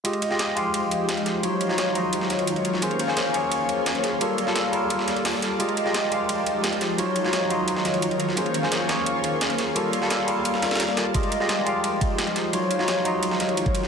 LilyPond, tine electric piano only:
\new Staff \with { instrumentName = "Tine electric piano" } { \time 4/4 \key ees \dorian \tempo 4 = 173 <aes f' g' ees''>8. <aes f' g' ees''>8. <aes f' g' f''>2~ <aes f' g' f''>8 | <ges ees' f' des''>8. <ges ees' f' des''>8. <ges ees' f' ees''>2~ <ges ees' f' ees''>8 | <bes des' aes' c''>8. <bes des' aes' c''>8. <bes des' aes' des''>2~ <bes des' aes' des''>8 | <g bes f' a'>8. <g bes f' a'>8. <g bes f' bes'>2~ <g bes f' bes'>8 |
<aes f' g' ees''>8. <aes f' g' ees''>8. <aes f' g' f''>2~ <aes f' g' f''>8 | <ges ees' f' des''>8. <ges ees' f' des''>8. <ges ees' f' ees''>2~ <ges ees' f' ees''>8 | <bes des' aes' c''>8. <bes des' aes' c''>8. <bes des' aes' des''>2~ <bes des' aes' des''>8 | <g bes f' a'>8. <g bes f' a'>8. <g bes f' bes'>2~ <g bes f' bes'>8 |
<aes f' g' ees''>8. <aes f' g' ees''>8. <aes f' g' f''>2~ <aes f' g' f''>8 | <ges ees' f' des''>8. <ges ees' f' des''>8. <ges ees' f' ees''>2~ <ges ees' f' ees''>8 | }